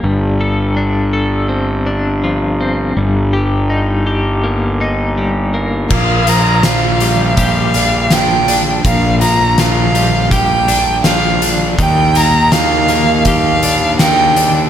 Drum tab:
CC |--------|--------|x-------|--------|
HH |--------|--------|-xxxxxxx|xxxxxxxx|
SD |--------|--------|--o---o-|--o---o-|
BD |--------|--------|o---o---|o---o---|

CC |--------|
HH |xxxxxxxx|
SD |--o---o-|
BD |o---o---|